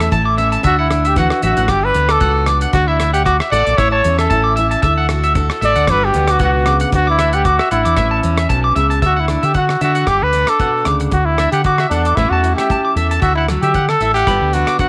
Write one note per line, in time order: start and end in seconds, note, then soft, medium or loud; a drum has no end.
0.00 0.62 A3 medium
0.00 0.37 C#4 soft
0.00 0.11 E4 medium
0.00 0.13 A4 medium
0.00 cross-stick medium
0.00 closed hi-hat soft
0.12 0.56 A1 medium
0.12 0.59 E3 medium
0.12 2.21 E4 medium
0.12 0.22 A5 medium
0.12 kick medium
0.12 closed hi-hat soft
0.25 0.34 D6 medium
0.38 0.61 C#4 soft
0.38 0.48 E5 medium
0.38 closed hi-hat soft
0.52 0.60 A5 medium
0.52 closed hi-hat soft
0.63 1.30 D2 medium
0.63 1.11 D3 medium
0.63 0.89 D4 medium
0.63 0.78 F#4 medium
0.63 0.74 E5 medium
0.63 kick medium
0.63 closed hi-hat soft
0.79 1.08 E4 medium
0.79 0.87 F#5 medium
0.90 1.66 D4 medium
0.90 cross-stick medium
0.90 closed hi-hat soft
1.05 1.18 G4 medium
1.05 1.13 E5 medium
1.05 closed hi-hat soft
1.16 1.42 E3 medium
1.16 1.42 F#4 medium
1.16 1.27 F#5 medium
1.16 kick medium
1.16 closed hi-hat soft
1.30 cross-stick medium
1.42 1.55 A1 medium
1.42 1.69 F#3 medium
1.42 1.72 F#4 medium
1.42 1.53 E5 medium
1.42 closed hi-hat soft
1.57 1.67 A1 medium
1.57 1.66 F#5 medium
1.57 closed hi-hat soft
1.68 1.91 G1 medium
1.68 2.16 G2 medium
1.68 2.48 D4 medium
1.68 1.86 G4 medium
1.68 1.79 D6 medium
1.68 kick medium
1.68 cross-stick medium
1.68 closed hi-hat soft
1.85 2.13 B4 medium
1.94 2.17 D2 medium
1.94 2.71 B3 medium
1.94 closed hi-hat soft
2.09 2.49 A4 medium
2.09 2.18 D6 medium
2.09 cross-stick medium
2.09 closed hi-hat soft
2.20 2.65 C#2 medium
2.20 2.71 F#4 medium
2.20 2.31 F#5 medium
2.20 kick medium
2.20 closed hi-hat soft
2.46 2.72 D4 soft
2.46 2.58 D6 medium
2.46 cross-stick medium
2.46 closed hi-hat soft
2.61 2.70 F#5 medium
2.61 closed hi-hat medium
2.73 3.39 D2 medium
2.73 3.21 D3 medium
2.73 3.00 D4 medium
2.73 2.89 F#4 medium
2.73 kick medium
2.73 closed hi-hat soft
2.87 3.13 E4 medium
2.87 2.96 E5 medium
2.99 3.25 D4 medium
2.99 3.10 E5 medium
2.99 cross-stick medium
2.99 closed hi-hat medium
3.13 3.25 G4 medium
3.13 3.22 F#5 medium
3.13 closed hi-hat soft
3.25 3.37 F#4 medium
3.25 3.36 D6 medium
3.25 muted steel-string acoustic guitar stroke medium
3.25 kick medium
3.25 closed hi-hat soft
3.40 3.49 E5 medium
3.40 cross-stick medium
3.51 3.64 A1 medium
3.51 3.76 A4 medium
3.51 3.79 D5 medium
3.51 3.62 F#5 medium
3.51 closed hi-hat soft
3.65 3.77 A#1 medium
3.65 3.74 D6 medium
3.65 closed hi-hat soft
3.77 4.00 A1 medium
3.77 4.26 A2 medium
3.77 4.31 E4 soft
3.77 3.91 C#5 medium
3.77 3.88 E5 medium
3.77 kick medium
3.77 cross-stick medium
3.77 closed hi-hat soft
3.91 4.16 C#5 medium
3.91 4.01 A5 medium
4.04 4.27 E2 medium
4.04 4.81 C#4 medium
4.04 closed hi-hat medium
4.18 4.55 A4 medium
4.18 4.27 E5 medium
4.18 cross-stick medium
4.18 closed hi-hat soft
4.30 4.75 A1 medium
4.30 4.58 E4 medium
4.30 4.40 A5 medium
4.30 kick medium
4.30 closed hi-hat soft
4.44 4.53 D6 medium
4.56 4.81 E4 medium
4.56 4.66 E5 medium
4.56 closed hi-hat soft
4.71 4.80 A5 medium
4.71 closed hi-hat soft
4.82 5.49 D2 medium
4.82 5.31 D3 medium
4.82 5.35 A4 medium
4.82 4.93 E5 medium
4.82 kick medium
4.82 closed hi-hat soft
4.98 5.06 F#5 medium
5.09 5.86 F#4 medium
5.09 cross-stick medium
5.09 closed hi-hat soft
5.24 5.32 E5 medium
5.24 closed hi-hat soft
5.35 5.83 D4 medium
5.35 5.62 A4 medium
5.35 muted clean electric guitar stroke medium
5.35 kick medium
5.35 closed hi-hat soft
5.50 cross-stick medium
5.61 5.74 A1 medium
5.61 5.86 A4 medium
5.61 5.92 D5 medium
5.61 5.72 E5 medium
5.61 closed hi-hat soft
5.76 5.86 D2 medium
5.76 5.84 F#5 medium
5.76 closed hi-hat soft
5.87 6.10 G1 loud
5.87 6.14 B3 medium
5.87 6.91 D4 medium
5.87 6.92 F#4 medium
5.87 6.06 B4 medium
5.87 5.98 D6 medium
5.87 muted steel-string acoustic guitar stroke medium
5.87 kick medium
5.87 cross-stick medium
5.87 closed hi-hat soft
6.05 6.33 G4 medium
6.14 6.36 D2 medium
6.14 6.91 B3 medium
6.14 closed hi-hat soft
6.28 6.42 F#4 medium
6.28 6.36 D6 medium
6.28 cross-stick medium
6.28 closed hi-hat soft
6.39 6.84 C#2 medium
6.39 6.66 B2 medium
6.39 6.50 F#5 medium
6.39 kick medium
6.39 closed hi-hat soft
6.43 6.80 F#4 medium
6.66 6.93 C#3 medium
6.66 6.76 D6 medium
6.66 cross-stick medium
6.66 closed hi-hat soft
6.80 6.89 F#5 medium
6.80 closed hi-hat soft
6.92 7.58 D2 medium
6.92 7.41 D3 medium
6.92 7.19 D4 medium
6.92 7.07 F#4 medium
6.92 kick medium
6.92 closed hi-hat medium
7.07 7.36 E4 medium
7.07 7.16 D6 medium
7.19 7.44 D4 medium
7.19 7.29 E5 medium
7.19 cross-stick medium
7.19 closed hi-hat medium
7.33 7.47 G4 medium
7.33 7.42 F#5 medium
7.33 closed hi-hat soft
7.45 7.71 D4 medium
7.45 7.71 F#4 medium
7.45 7.55 D6 medium
7.45 kick medium
7.45 closed hi-hat soft
7.59 7.68 E5 medium
7.59 cross-stick medium
7.71 7.83 A1 medium
7.71 7.95 D4 medium
7.71 8.46 E4 medium
7.71 7.81 F#5 medium
7.71 closed hi-hat medium
7.85 7.96 E2 medium
7.85 7.94 D6 medium
7.85 closed hi-hat soft
7.97 8.19 A1 loud
7.97 8.45 A2 medium
7.97 8.23 C#4 medium
7.97 8.07 E5 medium
7.97 kick medium
7.97 cross-stick medium
7.97 closed hi-hat soft
8.11 8.20 A5 medium
8.23 8.46 E2 medium
8.23 9.00 C#4 medium
8.23 closed hi-hat soft
8.38 8.46 E5 medium
8.38 cross-stick medium
8.38 closed hi-hat soft
8.49 8.74 B1 medium
8.49 8.76 B2 medium
8.49 8.60 A5 medium
8.49 kick medium
8.49 closed hi-hat medium
8.64 8.73 D6 medium
8.76 9.00 C#2 medium
8.76 9.03 C#3 medium
8.76 8.86 E5 medium
8.76 closed hi-hat soft
8.90 8.99 A5 medium
8.90 closed hi-hat soft
9.02 9.36 D2 medium
9.02 9.50 D3 medium
9.02 9.21 F#4 medium
9.02 9.12 E5 medium
9.02 kick medium
9.02 closed hi-hat soft
9.16 9.46 E4 medium
9.16 9.25 F#5 medium
9.28 9.53 D4 medium
9.28 cross-stick medium
9.28 closed hi-hat soft
9.43 9.75 D3 medium
9.43 9.56 G4 medium
9.43 9.51 E5 medium
9.43 closed hi-hat soft
9.54 9.80 D4 medium
9.54 9.80 F#4 medium
9.54 9.65 F#5 medium
9.54 kick medium
9.54 closed hi-hat soft
9.69 cross-stick medium
9.81 10.03 D3 medium
9.81 10.05 D4 soft
9.81 10.10 F#4 medium
9.81 9.91 E5 medium
9.81 closed hi-hat soft
9.95 10.04 F#5 medium
9.95 closed hi-hat soft
10.07 10.19 G1 medium
10.07 10.55 G2 medium
10.07 10.24 G4 medium
10.07 10.17 D6 medium
10.07 kick medium
10.07 cross-stick medium
10.07 closed hi-hat soft
10.22 10.44 D2 medium
10.22 10.51 B4 medium
10.33 11.09 D4 soft
10.33 closed hi-hat soft
10.47 10.87 A4 medium
10.47 10.56 D6 medium
10.47 cross-stick medium
10.47 closed hi-hat soft
10.60 10.85 B2 medium
10.60 10.70 F#5 medium
10.60 kick medium
10.60 closed hi-hat soft
10.85 11.08 D2 medium
10.85 11.12 C#3 soft
10.85 10.96 D6 medium
10.85 cross-stick medium
10.85 closed hi-hat soft
11.00 muted clean electric guitar stroke medium
11.00 closed hi-hat soft
11.11 11.46 D2 medium
11.11 11.60 D3 medium
11.11 11.27 F#4 medium
11.11 kick medium
11.11 closed hi-hat soft
11.25 11.51 E4 medium
11.38 11.63 D4 medium
11.38 11.49 E5 medium
11.38 cross-stick medium
11.38 closed hi-hat soft
11.52 11.84 D3 medium
11.52 11.63 G4 medium
11.52 11.62 F#5 medium
11.52 closed hi-hat soft
11.64 12.12 D4 medium
11.64 11.89 F#4 medium
11.64 11.76 D6 medium
11.64 kick medium
11.64 closed hi-hat soft
11.78 11.88 E5 medium
11.78 cross-stick medium
11.90 12.13 E2 medium
11.90 12.17 D4 medium
11.90 12.14 A4 medium
11.90 12.01 F#5 medium
11.90 closed hi-hat soft
12.05 12.14 D6 medium
12.05 closed hi-hat soft
12.16 12.29 A1 medium
12.16 12.65 A2 medium
12.16 12.68 A3 medium
12.16 13.20 C#4 medium
12.16 12.31 E4 medium
12.16 12.27 E5 medium
12.16 kick medium
12.16 cross-stick medium
12.16 closed hi-hat soft
12.30 12.53 E2 medium
12.30 12.55 F#4 medium
12.30 12.41 A5 medium
12.44 13.20 E4 medium
12.44 closed hi-hat soft
12.56 12.92 G4 medium
12.56 12.66 E5 medium
12.56 cross-stick medium
12.56 closed hi-hat soft
12.70 13.17 A3 medium
12.70 12.81 A5 medium
12.70 kick medium
12.70 closed hi-hat soft
12.85 12.93 D6 medium
12.96 13.18 E2 medium
12.96 13.20 A4 medium
12.96 13.06 E5 medium
12.96 closed hi-hat soft
13.11 13.19 A5 medium
13.11 closed hi-hat soft
13.21 13.56 D2 medium
13.21 13.70 D3 medium
13.21 13.35 F#4 medium
13.21 13.33 E5 medium
13.21 kick medium
13.21 closed hi-hat soft
13.35 13.47 E4 medium
13.35 13.45 F#5 medium
13.48 13.74 F#3 medium
13.48 cross-stick medium
13.48 closed hi-hat soft
13.62 13.94 D3 medium
13.62 13.90 G4 medium
13.62 13.72 E5 medium
13.62 closed hi-hat soft
13.74 14.23 F#3 medium
13.74 13.85 F#5 medium
13.74 kick medium
13.74 closed hi-hat soft
13.89 14.14 A4 medium
13.89 cross-stick medium
14.00 14.22 A1 medium
14.00 14.25 E4 soft
14.00 14.11 E5 medium
14.00 closed hi-hat soft
14.14 14.55 G4 medium
14.14 14.24 F#5 medium
14.14 closed hi-hat soft
14.27 14.39 G1 loud
14.27 14.76 G2 medium
14.27 14.79 D3 medium
14.27 14.89 B3 soft
14.27 14.54 D4 medium
14.27 14.37 B5 medium
14.27 kick medium
14.27 cross-stick medium
14.27 closed hi-hat soft
14.41 14.63 D2 medium
14.53 14.89 D4 medium
14.53 14.79 F#4 medium
14.53 closed hi-hat soft
14.67 14.76 D6 medium
14.67 cross-stick medium
14.67 closed hi-hat soft
14.79 14.89 D3 medium
14.79 14.89 F#4 medium
14.79 14.89 F#5 medium
14.79 kick medium
14.79 closed hi-hat soft